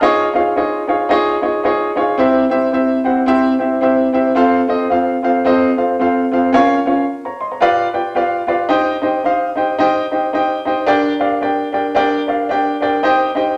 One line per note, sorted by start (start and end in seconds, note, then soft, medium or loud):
0.00 0.26 D#4 loud
0.00 0.26 F4 loud
0.00 0.26 G#4 loud
0.00 0.27 C#5 loud
0.00 0.27 D#5 loud
0.00 0.17 A5 medium
0.00 0.17 F6 medium
0.33 0.51 D#4 medium
0.33 0.51 F4 medium
0.33 0.51 G#4 medium
0.33 0.52 C#5 medium
0.33 0.52 F5 medium
0.56 0.81 D#4 medium
0.56 0.81 F4 medium
0.56 0.81 G#4 medium
0.56 0.81 C#5 medium
0.56 0.81 D#5 medium
0.88 1.05 D#4 medium
0.88 1.05 F4 medium
0.88 1.05 G#4 medium
0.88 1.05 C#5 medium
0.88 1.06 F5 medium
1.09 1.34 D#4 loud
1.09 1.35 F4 loud
1.09 1.35 G#4 loud
1.09 1.35 C#5 loud
1.09 1.35 D#5 loud
1.41 1.59 D#4 medium
1.41 1.59 F4 medium
1.41 1.59 G#4 medium
1.41 1.60 C#5 medium
1.41 1.60 D#5 medium
1.64 1.88 D#4 medium
1.64 1.89 F4 medium
1.64 1.89 G#4 medium
1.64 1.89 C#5 medium
1.64 1.90 D#5 loud
1.96 2.13 D#4 medium
1.96 2.13 F4 medium
1.96 2.14 G#4 medium
1.96 2.14 C#5 medium
1.96 2.14 F5 medium
2.18 2.43 C4 loud
2.18 2.43 E4 loud
2.18 2.43 G4 loud
2.18 2.43 C5 loud
2.18 2.44 E5 loud
2.50 2.67 C4 medium
2.50 2.67 E4 medium
2.50 2.68 G4 medium
2.50 2.68 C5 medium
2.50 2.68 E5 loud
2.72 2.97 C4 medium
2.72 2.97 E4 medium
2.72 2.97 G4 medium
2.72 2.98 C5 medium
2.72 2.98 E5 loud
3.04 3.21 C4 medium
3.04 3.22 E4 medium
3.04 3.22 G4 medium
3.04 3.22 C5 medium
3.04 3.22 F#5 medium
3.26 3.51 C4 loud
3.26 3.51 E4 loud
3.26 3.52 G4 loud
3.26 3.52 C5 medium
3.26 3.52 E5 loud
3.59 3.76 C4 medium
3.59 3.76 E4 medium
3.59 3.76 G4 medium
3.59 3.76 C5 medium
3.59 3.77 E5 medium
3.81 4.06 C4 loud
3.81 4.06 E4 medium
3.81 4.06 G4 medium
3.81 4.06 C5 medium
3.81 4.07 E5 loud
4.13 4.30 C4 medium
4.13 4.30 E4 medium
4.13 4.30 G4 medium
4.13 4.31 C5 medium
4.13 4.31 E5 loud
4.35 4.60 C4 loud
4.35 4.60 F4 loud
4.35 4.60 A4 loud
4.35 4.60 C5 loud
4.35 4.61 F5 loud
4.68 4.85 C4 medium
4.68 4.85 F4 medium
4.68 4.85 A4 medium
4.68 4.85 C5 medium
4.68 4.86 D#5 loud
4.89 5.14 C4 medium
4.89 5.14 F4 medium
4.89 5.15 A4 medium
4.89 5.15 C5 medium
4.89 5.15 F5 loud
5.23 5.39 C4 medium
5.23 5.39 F4 medium
5.23 5.40 A4 medium
5.23 5.40 C5 medium
5.23 5.40 F5 loud
5.44 5.69 C4 loud
5.44 5.69 F4 loud
5.44 5.69 A4 loud
5.44 5.69 C5 loud
5.44 5.70 D#5 loud
5.77 5.94 C4 medium
5.77 5.94 F4 medium
5.77 5.94 A4 medium
5.77 5.94 C5 medium
5.77 5.94 F5 medium
5.99 6.23 C4 medium
5.99 6.23 F4 medium
5.99 6.24 A4 medium
5.99 6.24 C5 medium
5.99 6.24 F5 loud
6.32 6.48 C4 medium
6.32 6.48 F4 medium
6.32 6.49 A4 medium
6.32 6.49 C5 medium
6.32 6.49 F5 loud
6.53 6.77 C#4 loud
6.53 6.77 F4 loud
6.53 6.78 A#4 loud
6.53 6.78 C#5 loud
6.53 6.78 F5 loud
6.86 7.02 C#4 medium
6.86 7.02 F4 medium
6.86 7.03 A#4 medium
6.86 7.03 C#5 medium
6.86 7.03 F5 medium
7.25 7.40 C#5 medium
7.25 7.39 A#5 medium
7.41 7.51 D#5 medium
7.41 7.51 C6 medium
7.51 7.77 C#5 soft
7.51 7.77 A#5 medium
7.60 7.85 F4 loud
7.60 7.86 G4 loud
7.60 7.86 B4 loud
7.60 7.86 D5 loud
7.60 7.86 F5 loud
7.93 8.10 F4 medium
7.93 8.11 G4 medium
7.93 8.10 B4 medium
7.93 8.11 D5 medium
7.93 8.11 G5 medium
8.15 8.40 F4 medium
8.15 8.40 G4 medium
8.15 8.40 B4 medium
8.15 8.40 D5 medium
8.15 8.41 F5 loud
8.47 8.64 F4 medium
8.47 8.65 G4 medium
8.47 8.65 B4 medium
8.47 8.65 D5 medium
8.47 8.65 F5 medium
8.69 8.94 D#4 loud
8.69 8.94 G4 loud
8.69 8.94 C5 loud
8.69 8.94 D#5 loud
8.69 8.95 G5 loud
9.02 9.19 D#4 medium
9.02 9.19 G4 medium
9.02 9.19 C5 medium
9.02 9.20 D#5 medium
9.02 9.20 G5 medium
9.24 9.49 D#4 medium
9.24 9.49 G4 medium
9.24 9.49 C5 medium
9.24 9.49 D#5 medium
9.24 9.49 F5 loud
9.56 9.73 D#4 medium
9.56 9.73 G4 medium
9.56 9.74 C5 medium
9.56 9.74 D#5 medium
9.56 9.74 G5 medium
9.79 10.03 D#4 loud
9.79 10.03 G4 loud
9.79 10.03 C5 loud
9.79 10.04 D#5 loud
9.79 10.04 G5 loud
10.11 10.28 D#4 medium
10.11 10.28 G4 medium
10.11 10.28 C5 medium
10.11 10.28 D#5 medium
10.11 10.29 G5 medium
10.33 10.57 D#4 medium
10.33 10.58 G4 medium
10.33 10.58 C5 medium
10.33 10.58 D#5 medium
10.33 10.58 G5 loud
10.65 10.82 D#4 medium
10.65 10.82 G4 medium
10.65 10.83 C5 medium
10.65 10.83 D#5 medium
10.65 10.83 G5 medium
10.86 11.11 D4 loud
10.86 11.11 G4 loud
10.86 11.12 A#4 loud
10.86 11.12 D5 loud
10.86 11.12 G5 loud
11.20 11.36 D4 medium
11.20 11.36 G4 medium
11.20 11.37 A#4 medium
11.20 11.37 D5 medium
11.20 11.37 F5 medium
11.41 11.65 D4 medium
11.41 11.66 G4 medium
11.41 11.66 A#4 medium
11.41 11.66 D5 medium
11.41 11.66 G5 medium
11.72 11.90 D4 medium
11.72 11.90 G4 medium
11.72 11.90 A#4 medium
11.72 11.90 D5 medium
11.72 11.91 G5 medium
11.95 12.19 D4 loud
11.95 12.20 G4 loud
11.95 12.20 A#4 loud
11.95 12.20 D5 loud
11.95 12.20 G5 loud
12.27 12.44 D4 medium
12.27 12.44 G4 medium
12.27 12.45 A#4 medium
12.27 12.45 D5 medium
12.27 12.45 F5 medium
12.49 12.74 D4 medium
12.49 12.74 G4 medium
12.49 12.74 A#4 medium
12.49 12.75 D5 medium
12.49 12.75 G5 loud
12.80 12.98 D4 medium
12.80 12.98 G4 medium
12.80 12.99 A#4 medium
12.80 12.99 D5 medium
12.80 12.99 G5 loud
13.03 13.28 D#4 loud
13.03 13.28 G4 loud
13.03 13.28 C5 loud
13.03 13.28 D#5 loud
13.03 13.29 G5 loud
13.35 13.52 D#4 medium
13.35 13.52 G4 medium
13.35 13.53 C5 medium
13.35 13.53 D#5 medium
13.35 13.53 G5 loud